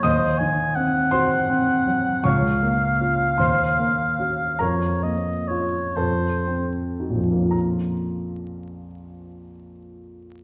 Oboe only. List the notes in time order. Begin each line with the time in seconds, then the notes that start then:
0.03 C5
0.38 G#5
0.75 F#5
2.25 F5
4.61 C#5
5.03 D#5
5.48 C#5
5.96 C5